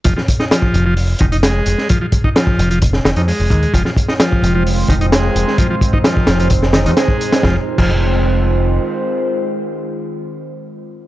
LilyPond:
<<
  \new Staff \with { instrumentName = "Ambient pad" } { \time 4/4 \key f \minor \tempo 4 = 130 << { r1 | r1 | <ees aes c' c''>1~ | <ees aes c' c''>1 |
<ees aes c' f' c''>1~ | <ees aes c' f' c''>1 | } \\ { r1 | r1 | f'1 | ees'1 |
r1 | r1 | } >> }
  \new Staff \with { instrumentName = "Transistor combo organ" } { \clef bass \time 4/4 \key f \minor f16 f16 r16 ees'16 f8. f16 r8 ees16 ees'16 aes4 | f16 f16 r16 ees'16 f8. f16 r8 ees16 ees'16 aes4 | f16 f16 r16 ees'16 f8. f16 r8 ees16 ees'16 aes4 | f16 f16 r16 ees'16 f8. f16 r8 ees16 ees'16 aes4 |
f16 r8 f16 r2. | r1 | }
  \new Staff \with { instrumentName = "Picked electric bass" } { \clef bass \time 4/4 \key f \minor f,,16 r4 r16 f,,8. r16 f,,8. r16 f,,16 r16 | r4. f,,8. r16 f,,16 f,16 r16 f,,16 ees,16 r16 | f,,16 r4 r16 f,,8. r16 f,,8. r16 f,,16 r16 | r4. f,,4~ f,,16 f,16 r4 |
f,,16 r8 f,,2~ f,,16 r4 | r1 | }
  \new DrumStaff \with { instrumentName = "Drums" } \drummode { \time 4/4 <hh bd>16 sn16 <hh bd>16 sn16 <hh sn>16 bd16 hh8 hho8 <hh bd>16 hh16 <hh sn>8 hh16 sn16 | <hh bd>8 <hh bd>16 bd16 <hh sn>16 bd16 hh16 hh16 <hh bd>16 sn16 <hh sn>16 hh16 hho8 <hh bd>16 hh16 | <hh bd>16 sn16 <hh bd>16 sn16 <hh sn>16 bd16 hh8 hho8 <hh bd>16 hh16 <hh sn>8 hh16 sn16 | <hh bd>8 <hh bd>16 bd16 <hh sn>16 bd16 <hh sn>16 hh16 <hh bd>16 sn16 <hh sn>16 hh16 <hh sn>16 bd16 hh16 <hh sn>16 |
<bd sn>8. <cymc bd>16 r4 r4 r4 | r4 r4 r4 r4 | }
>>